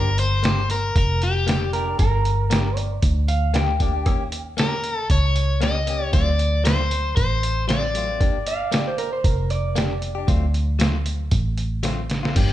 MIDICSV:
0, 0, Header, 1, 6, 480
1, 0, Start_track
1, 0, Key_signature, -2, "minor"
1, 0, Tempo, 518135
1, 1846, Time_signature, 4, 2, 24, 8
1, 11605, End_track
2, 0, Start_track
2, 0, Title_t, "Clean electric guitar"
2, 0, Program_c, 0, 27
2, 1604, Note_on_c, 0, 70, 85
2, 1833, Note_off_c, 0, 70, 0
2, 1844, Note_on_c, 0, 70, 80
2, 2563, Note_off_c, 0, 70, 0
2, 2563, Note_on_c, 0, 74, 73
2, 3029, Note_off_c, 0, 74, 0
2, 3043, Note_on_c, 0, 77, 67
2, 3276, Note_off_c, 0, 77, 0
2, 3290, Note_on_c, 0, 79, 80
2, 4109, Note_off_c, 0, 79, 0
2, 7852, Note_on_c, 0, 77, 93
2, 8081, Note_off_c, 0, 77, 0
2, 8085, Note_on_c, 0, 74, 66
2, 8209, Note_off_c, 0, 74, 0
2, 8222, Note_on_c, 0, 72, 71
2, 8320, Note_off_c, 0, 72, 0
2, 8324, Note_on_c, 0, 70, 85
2, 8448, Note_off_c, 0, 70, 0
2, 8455, Note_on_c, 0, 72, 69
2, 8563, Note_off_c, 0, 72, 0
2, 8563, Note_on_c, 0, 70, 68
2, 8797, Note_off_c, 0, 70, 0
2, 8806, Note_on_c, 0, 74, 84
2, 9738, Note_off_c, 0, 74, 0
2, 11605, End_track
3, 0, Start_track
3, 0, Title_t, "Overdriven electric guitar"
3, 0, Program_c, 1, 29
3, 0, Note_on_c, 1, 70, 96
3, 175, Note_off_c, 1, 70, 0
3, 179, Note_on_c, 1, 72, 101
3, 655, Note_off_c, 1, 72, 0
3, 659, Note_on_c, 1, 70, 72
3, 894, Note_off_c, 1, 70, 0
3, 905, Note_on_c, 1, 70, 76
3, 1120, Note_off_c, 1, 70, 0
3, 1143, Note_on_c, 1, 67, 70
3, 1581, Note_off_c, 1, 67, 0
3, 4261, Note_on_c, 1, 70, 77
3, 4585, Note_off_c, 1, 70, 0
3, 4585, Note_on_c, 1, 69, 77
3, 4699, Note_off_c, 1, 69, 0
3, 4737, Note_on_c, 1, 73, 98
3, 5208, Note_off_c, 1, 73, 0
3, 5212, Note_on_c, 1, 75, 102
3, 5680, Note_off_c, 1, 75, 0
3, 5684, Note_on_c, 1, 74, 103
3, 6160, Note_off_c, 1, 74, 0
3, 6163, Note_on_c, 1, 72, 74
3, 6628, Note_off_c, 1, 72, 0
3, 6639, Note_on_c, 1, 72, 83
3, 7087, Note_off_c, 1, 72, 0
3, 7125, Note_on_c, 1, 74, 90
3, 8528, Note_off_c, 1, 74, 0
3, 11605, End_track
4, 0, Start_track
4, 0, Title_t, "Clean electric guitar"
4, 0, Program_c, 2, 27
4, 397, Note_on_c, 2, 58, 65
4, 410, Note_on_c, 2, 62, 66
4, 419, Note_on_c, 2, 67, 77
4, 553, Note_off_c, 2, 58, 0
4, 559, Note_off_c, 2, 62, 0
4, 564, Note_off_c, 2, 67, 0
4, 1359, Note_on_c, 2, 58, 78
4, 1371, Note_on_c, 2, 62, 79
4, 1378, Note_on_c, 2, 67, 87
4, 1513, Note_off_c, 2, 58, 0
4, 1519, Note_off_c, 2, 62, 0
4, 1523, Note_off_c, 2, 67, 0
4, 1598, Note_on_c, 2, 58, 51
4, 1614, Note_on_c, 2, 62, 50
4, 1625, Note_on_c, 2, 67, 55
4, 1714, Note_off_c, 2, 67, 0
4, 1725, Note_on_c, 2, 67, 51
4, 1730, Note_off_c, 2, 58, 0
4, 1738, Note_off_c, 2, 62, 0
4, 1753, Note_on_c, 2, 62, 41
4, 1867, Note_off_c, 2, 67, 0
4, 1881, Note_off_c, 2, 62, 0
4, 2318, Note_on_c, 2, 58, 81
4, 2331, Note_on_c, 2, 62, 83
4, 2340, Note_on_c, 2, 67, 97
4, 2472, Note_off_c, 2, 58, 0
4, 2478, Note_off_c, 2, 62, 0
4, 2483, Note_off_c, 2, 67, 0
4, 3277, Note_on_c, 2, 58, 86
4, 3287, Note_on_c, 2, 62, 83
4, 3297, Note_on_c, 2, 67, 96
4, 3431, Note_off_c, 2, 58, 0
4, 3436, Note_off_c, 2, 62, 0
4, 3441, Note_off_c, 2, 67, 0
4, 3514, Note_on_c, 2, 58, 54
4, 3530, Note_on_c, 2, 62, 59
4, 3541, Note_on_c, 2, 67, 65
4, 3631, Note_off_c, 2, 67, 0
4, 3643, Note_on_c, 2, 67, 50
4, 3647, Note_off_c, 2, 58, 0
4, 3655, Note_off_c, 2, 62, 0
4, 3669, Note_on_c, 2, 62, 49
4, 3757, Note_on_c, 2, 58, 73
4, 3759, Note_off_c, 2, 67, 0
4, 3764, Note_off_c, 2, 62, 0
4, 3768, Note_on_c, 2, 61, 66
4, 3777, Note_on_c, 2, 67, 69
4, 3911, Note_off_c, 2, 58, 0
4, 3916, Note_off_c, 2, 61, 0
4, 3921, Note_off_c, 2, 67, 0
4, 4233, Note_on_c, 2, 58, 62
4, 4245, Note_on_c, 2, 61, 69
4, 4255, Note_on_c, 2, 67, 68
4, 4389, Note_off_c, 2, 58, 0
4, 4395, Note_off_c, 2, 61, 0
4, 4399, Note_off_c, 2, 67, 0
4, 5194, Note_on_c, 2, 58, 81
4, 5207, Note_on_c, 2, 61, 71
4, 5214, Note_on_c, 2, 67, 82
4, 5349, Note_off_c, 2, 58, 0
4, 5355, Note_off_c, 2, 61, 0
4, 5359, Note_off_c, 2, 67, 0
4, 5432, Note_on_c, 2, 58, 54
4, 5449, Note_on_c, 2, 61, 58
4, 5464, Note_on_c, 2, 67, 58
4, 5547, Note_off_c, 2, 67, 0
4, 5559, Note_on_c, 2, 67, 48
4, 5566, Note_off_c, 2, 58, 0
4, 5574, Note_off_c, 2, 61, 0
4, 5588, Note_on_c, 2, 61, 39
4, 5673, Note_on_c, 2, 54, 69
4, 5677, Note_off_c, 2, 67, 0
4, 5683, Note_on_c, 2, 57, 66
4, 5684, Note_off_c, 2, 61, 0
4, 5688, Note_on_c, 2, 60, 73
4, 5693, Note_on_c, 2, 65, 72
4, 5829, Note_off_c, 2, 54, 0
4, 5833, Note_off_c, 2, 57, 0
4, 5836, Note_off_c, 2, 60, 0
4, 5838, Note_off_c, 2, 65, 0
4, 6152, Note_on_c, 2, 54, 73
4, 6160, Note_on_c, 2, 57, 69
4, 6167, Note_on_c, 2, 60, 79
4, 6172, Note_on_c, 2, 65, 81
4, 6308, Note_off_c, 2, 54, 0
4, 6312, Note_off_c, 2, 57, 0
4, 6315, Note_off_c, 2, 60, 0
4, 6318, Note_off_c, 2, 65, 0
4, 7112, Note_on_c, 2, 54, 77
4, 7122, Note_on_c, 2, 57, 81
4, 7128, Note_on_c, 2, 60, 86
4, 7132, Note_on_c, 2, 65, 77
4, 7268, Note_off_c, 2, 54, 0
4, 7273, Note_off_c, 2, 57, 0
4, 7276, Note_off_c, 2, 60, 0
4, 7278, Note_off_c, 2, 65, 0
4, 7355, Note_on_c, 2, 54, 60
4, 7366, Note_on_c, 2, 57, 57
4, 7375, Note_on_c, 2, 60, 51
4, 7384, Note_on_c, 2, 65, 58
4, 7470, Note_off_c, 2, 65, 0
4, 7481, Note_on_c, 2, 65, 49
4, 7487, Note_off_c, 2, 54, 0
4, 7487, Note_off_c, 2, 60, 0
4, 7493, Note_off_c, 2, 57, 0
4, 7498, Note_on_c, 2, 60, 44
4, 7512, Note_on_c, 2, 57, 36
4, 7593, Note_off_c, 2, 57, 0
4, 7597, Note_on_c, 2, 58, 64
4, 7598, Note_off_c, 2, 65, 0
4, 7603, Note_off_c, 2, 60, 0
4, 7607, Note_on_c, 2, 62, 70
4, 7617, Note_on_c, 2, 67, 72
4, 7750, Note_off_c, 2, 58, 0
4, 7756, Note_off_c, 2, 62, 0
4, 7761, Note_off_c, 2, 67, 0
4, 8074, Note_on_c, 2, 58, 86
4, 8085, Note_on_c, 2, 62, 89
4, 8094, Note_on_c, 2, 67, 84
4, 8229, Note_off_c, 2, 58, 0
4, 8235, Note_off_c, 2, 62, 0
4, 8239, Note_off_c, 2, 67, 0
4, 9037, Note_on_c, 2, 58, 90
4, 9049, Note_on_c, 2, 62, 90
4, 9058, Note_on_c, 2, 67, 94
4, 9191, Note_off_c, 2, 58, 0
4, 9197, Note_off_c, 2, 62, 0
4, 9202, Note_off_c, 2, 67, 0
4, 9402, Note_on_c, 2, 67, 53
4, 9430, Note_on_c, 2, 62, 44
4, 9516, Note_on_c, 2, 54, 75
4, 9520, Note_off_c, 2, 67, 0
4, 9525, Note_on_c, 2, 57, 67
4, 9528, Note_off_c, 2, 62, 0
4, 9532, Note_on_c, 2, 60, 76
4, 9538, Note_on_c, 2, 65, 85
4, 9671, Note_off_c, 2, 54, 0
4, 9676, Note_off_c, 2, 57, 0
4, 9679, Note_off_c, 2, 60, 0
4, 9682, Note_off_c, 2, 65, 0
4, 9996, Note_on_c, 2, 54, 83
4, 10005, Note_on_c, 2, 57, 84
4, 10013, Note_on_c, 2, 60, 75
4, 10016, Note_on_c, 2, 65, 94
4, 10151, Note_off_c, 2, 54, 0
4, 10156, Note_off_c, 2, 57, 0
4, 10160, Note_off_c, 2, 60, 0
4, 10162, Note_off_c, 2, 65, 0
4, 10959, Note_on_c, 2, 54, 72
4, 10967, Note_on_c, 2, 57, 83
4, 10974, Note_on_c, 2, 60, 88
4, 10979, Note_on_c, 2, 65, 88
4, 11114, Note_off_c, 2, 54, 0
4, 11118, Note_off_c, 2, 57, 0
4, 11121, Note_off_c, 2, 60, 0
4, 11124, Note_off_c, 2, 65, 0
4, 11331, Note_on_c, 2, 65, 52
4, 11345, Note_on_c, 2, 60, 44
4, 11357, Note_on_c, 2, 57, 49
4, 11441, Note_off_c, 2, 57, 0
4, 11445, Note_on_c, 2, 58, 71
4, 11446, Note_off_c, 2, 65, 0
4, 11452, Note_off_c, 2, 60, 0
4, 11456, Note_on_c, 2, 62, 67
4, 11463, Note_on_c, 2, 67, 82
4, 11597, Note_off_c, 2, 58, 0
4, 11603, Note_off_c, 2, 62, 0
4, 11605, Note_off_c, 2, 67, 0
4, 11605, End_track
5, 0, Start_track
5, 0, Title_t, "Fingered electric bass"
5, 0, Program_c, 3, 33
5, 0, Note_on_c, 3, 31, 84
5, 850, Note_off_c, 3, 31, 0
5, 886, Note_on_c, 3, 29, 87
5, 1808, Note_off_c, 3, 29, 0
5, 1846, Note_on_c, 3, 31, 93
5, 2768, Note_off_c, 3, 31, 0
5, 2804, Note_on_c, 3, 38, 97
5, 3760, Note_off_c, 3, 38, 0
5, 3760, Note_on_c, 3, 39, 90
5, 4685, Note_off_c, 3, 39, 0
5, 4721, Note_on_c, 3, 37, 79
5, 5645, Note_off_c, 3, 37, 0
5, 5679, Note_on_c, 3, 38, 97
5, 6604, Note_off_c, 3, 38, 0
5, 6640, Note_on_c, 3, 33, 91
5, 7601, Note_off_c, 3, 33, 0
5, 7601, Note_on_c, 3, 31, 92
5, 8526, Note_off_c, 3, 31, 0
5, 8561, Note_on_c, 3, 29, 84
5, 9487, Note_off_c, 3, 29, 0
5, 9524, Note_on_c, 3, 38, 98
5, 10449, Note_off_c, 3, 38, 0
5, 10484, Note_on_c, 3, 33, 94
5, 11410, Note_off_c, 3, 33, 0
5, 11452, Note_on_c, 3, 31, 98
5, 11605, Note_off_c, 3, 31, 0
5, 11605, End_track
6, 0, Start_track
6, 0, Title_t, "Drums"
6, 167, Note_on_c, 9, 42, 58
6, 260, Note_off_c, 9, 42, 0
6, 404, Note_on_c, 9, 42, 77
6, 419, Note_on_c, 9, 38, 108
6, 497, Note_off_c, 9, 42, 0
6, 511, Note_off_c, 9, 38, 0
6, 646, Note_on_c, 9, 42, 50
6, 739, Note_off_c, 9, 42, 0
6, 886, Note_on_c, 9, 36, 79
6, 887, Note_on_c, 9, 42, 76
6, 979, Note_off_c, 9, 36, 0
6, 980, Note_off_c, 9, 42, 0
6, 1127, Note_on_c, 9, 42, 58
6, 1220, Note_off_c, 9, 42, 0
6, 1368, Note_on_c, 9, 42, 70
6, 1383, Note_on_c, 9, 38, 105
6, 1460, Note_off_c, 9, 42, 0
6, 1475, Note_off_c, 9, 38, 0
6, 1606, Note_on_c, 9, 42, 55
6, 1698, Note_off_c, 9, 42, 0
6, 1844, Note_on_c, 9, 42, 78
6, 1845, Note_on_c, 9, 36, 85
6, 1936, Note_off_c, 9, 42, 0
6, 1938, Note_off_c, 9, 36, 0
6, 2087, Note_on_c, 9, 42, 63
6, 2179, Note_off_c, 9, 42, 0
6, 2325, Note_on_c, 9, 42, 92
6, 2340, Note_on_c, 9, 38, 102
6, 2418, Note_off_c, 9, 42, 0
6, 2433, Note_off_c, 9, 38, 0
6, 2565, Note_on_c, 9, 42, 65
6, 2658, Note_off_c, 9, 42, 0
6, 2802, Note_on_c, 9, 42, 84
6, 2803, Note_on_c, 9, 36, 76
6, 2895, Note_off_c, 9, 42, 0
6, 2896, Note_off_c, 9, 36, 0
6, 3042, Note_on_c, 9, 42, 56
6, 3135, Note_off_c, 9, 42, 0
6, 3280, Note_on_c, 9, 42, 72
6, 3295, Note_on_c, 9, 38, 98
6, 3373, Note_off_c, 9, 42, 0
6, 3388, Note_off_c, 9, 38, 0
6, 3521, Note_on_c, 9, 42, 56
6, 3523, Note_on_c, 9, 36, 62
6, 3613, Note_off_c, 9, 42, 0
6, 3615, Note_off_c, 9, 36, 0
6, 3760, Note_on_c, 9, 42, 70
6, 3763, Note_on_c, 9, 36, 93
6, 3853, Note_off_c, 9, 42, 0
6, 3855, Note_off_c, 9, 36, 0
6, 4003, Note_on_c, 9, 42, 59
6, 4096, Note_off_c, 9, 42, 0
6, 4242, Note_on_c, 9, 42, 82
6, 4257, Note_on_c, 9, 38, 105
6, 4335, Note_off_c, 9, 42, 0
6, 4349, Note_off_c, 9, 38, 0
6, 4480, Note_on_c, 9, 42, 57
6, 4573, Note_off_c, 9, 42, 0
6, 4723, Note_on_c, 9, 36, 80
6, 4723, Note_on_c, 9, 42, 73
6, 4815, Note_off_c, 9, 42, 0
6, 4816, Note_off_c, 9, 36, 0
6, 4963, Note_on_c, 9, 42, 54
6, 5055, Note_off_c, 9, 42, 0
6, 5202, Note_on_c, 9, 42, 66
6, 5217, Note_on_c, 9, 38, 93
6, 5295, Note_off_c, 9, 42, 0
6, 5310, Note_off_c, 9, 38, 0
6, 5440, Note_on_c, 9, 42, 50
6, 5533, Note_off_c, 9, 42, 0
6, 5680, Note_on_c, 9, 42, 68
6, 5681, Note_on_c, 9, 36, 98
6, 5773, Note_off_c, 9, 42, 0
6, 5774, Note_off_c, 9, 36, 0
6, 5922, Note_on_c, 9, 42, 62
6, 6015, Note_off_c, 9, 42, 0
6, 6163, Note_on_c, 9, 42, 83
6, 6178, Note_on_c, 9, 38, 113
6, 6256, Note_off_c, 9, 42, 0
6, 6271, Note_off_c, 9, 38, 0
6, 6403, Note_on_c, 9, 42, 62
6, 6496, Note_off_c, 9, 42, 0
6, 6642, Note_on_c, 9, 36, 83
6, 6642, Note_on_c, 9, 42, 87
6, 6734, Note_off_c, 9, 42, 0
6, 6735, Note_off_c, 9, 36, 0
6, 6886, Note_on_c, 9, 42, 60
6, 6978, Note_off_c, 9, 42, 0
6, 7122, Note_on_c, 9, 42, 76
6, 7137, Note_on_c, 9, 38, 92
6, 7215, Note_off_c, 9, 42, 0
6, 7229, Note_off_c, 9, 38, 0
6, 7364, Note_on_c, 9, 42, 59
6, 7457, Note_off_c, 9, 42, 0
6, 7602, Note_on_c, 9, 36, 94
6, 7602, Note_on_c, 9, 42, 77
6, 7695, Note_off_c, 9, 36, 0
6, 7695, Note_off_c, 9, 42, 0
6, 7842, Note_on_c, 9, 42, 64
6, 7935, Note_off_c, 9, 42, 0
6, 8081, Note_on_c, 9, 42, 82
6, 8096, Note_on_c, 9, 38, 98
6, 8174, Note_off_c, 9, 42, 0
6, 8189, Note_off_c, 9, 38, 0
6, 8321, Note_on_c, 9, 42, 61
6, 8414, Note_off_c, 9, 42, 0
6, 8562, Note_on_c, 9, 36, 81
6, 8564, Note_on_c, 9, 42, 73
6, 8655, Note_off_c, 9, 36, 0
6, 8657, Note_off_c, 9, 42, 0
6, 8803, Note_on_c, 9, 42, 56
6, 8896, Note_off_c, 9, 42, 0
6, 9044, Note_on_c, 9, 42, 70
6, 9059, Note_on_c, 9, 38, 91
6, 9137, Note_off_c, 9, 42, 0
6, 9151, Note_off_c, 9, 38, 0
6, 9282, Note_on_c, 9, 42, 51
6, 9375, Note_off_c, 9, 42, 0
6, 9524, Note_on_c, 9, 36, 99
6, 9525, Note_on_c, 9, 42, 72
6, 9617, Note_off_c, 9, 36, 0
6, 9617, Note_off_c, 9, 42, 0
6, 9767, Note_on_c, 9, 42, 54
6, 9860, Note_off_c, 9, 42, 0
6, 10003, Note_on_c, 9, 42, 87
6, 10017, Note_on_c, 9, 38, 115
6, 10095, Note_off_c, 9, 42, 0
6, 10110, Note_off_c, 9, 38, 0
6, 10244, Note_on_c, 9, 42, 56
6, 10336, Note_off_c, 9, 42, 0
6, 10481, Note_on_c, 9, 42, 82
6, 10485, Note_on_c, 9, 36, 85
6, 10574, Note_off_c, 9, 42, 0
6, 10577, Note_off_c, 9, 36, 0
6, 10723, Note_on_c, 9, 42, 60
6, 10816, Note_off_c, 9, 42, 0
6, 10963, Note_on_c, 9, 42, 75
6, 10978, Note_on_c, 9, 38, 53
6, 11055, Note_off_c, 9, 42, 0
6, 11070, Note_off_c, 9, 38, 0
6, 11206, Note_on_c, 9, 42, 63
6, 11221, Note_on_c, 9, 38, 72
6, 11298, Note_off_c, 9, 42, 0
6, 11313, Note_off_c, 9, 38, 0
6, 11351, Note_on_c, 9, 38, 69
6, 11444, Note_off_c, 9, 38, 0
6, 11450, Note_on_c, 9, 36, 91
6, 11450, Note_on_c, 9, 42, 74
6, 11450, Note_on_c, 9, 49, 88
6, 11543, Note_off_c, 9, 36, 0
6, 11543, Note_off_c, 9, 42, 0
6, 11543, Note_off_c, 9, 49, 0
6, 11605, End_track
0, 0, End_of_file